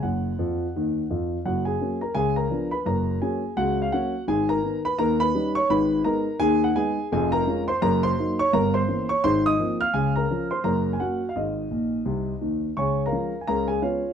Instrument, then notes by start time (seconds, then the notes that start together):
grand piano
0.03 F#1 F#2 F#5
0.39 F2 F3
0.76 D#2 D#3
1.10 F2 F3
1.45 F#1 F#2 F#4 F#5
1.65 G#4 G#5
1.81 F#3 A#3 C#4
2.01 A#4 A#5
2.15 C#2 C#3 G#4 G#5
2.36 A#4 A#5
2.50 F3 B3 D4
2.71 B4 B5
2.86 F#1 F#2 A#4 A#5
3.22 F#3 A#3 C#4 G#4 G#5
3.57 C#2 C#3 F#4 F#5
3.82 F5
3.92 F#3 A#3 C#4 F#4 F#5
4.28 G#1 G#2 G#4 G#5
4.49 A#4 A#5
4.64 B3
4.85 B4 B5
4.98 D#2 D#3 A#4 A#5
5.20 B4 B5
5.34 G3 C#4 D#4
5.55 C#5 C#6
5.70 G#1 G#2 B4 B5
6.04 G#3 B3 D#4 A#4 A#5
6.40 D#2 D#3 G#4 G#5
6.64 F#5
6.76 G#3 B3 D#4 G#4 G#5
7.12 F1 F2 G#4 G#5
7.32 A#4 A#5
7.47 G#3 C#4 F4
7.68 C5 C6
7.82 F#1 F#2 A#4 A#5
8.03 C5 C6
8.18 F#3 A#3 D#4
8.39 C#5 C#6
8.53 G1 G2 A#4 A#5
8.74 C5 C6
8.88 E3 A#3 C#4
9.09 C#5 C#6
9.24 G#1 G#2 C5 C6
9.46 D#5 D#6
9.60 F3 A#3 C4
9.81 F5 F6
9.93 C#2 C#3 G#4 G#5
10.16 A#4 A#5
10.31 F3 C#4
10.51 C5 C6
10.64 F#1 F#2 A#4 A#5
10.93 G#5
11.00 F#3 A#3 C#4 F#4 F#5
11.29 F5
11.36 G#1 G#2 D#4 D#5
11.71 A#1 A#2
12.05 C2 C3
12.41 D#2 D#3
12.77 C#2 C#3 C#5 G#5 C#6
13.06 A#4 F5 A#5
13.12 F3 G#3 C#4
13.41 G#5
13.47 C#2 C#3 A#4 A#5
13.68 G#4 G#5
13.82 G#3 B3 C#4 F4 C#5 F5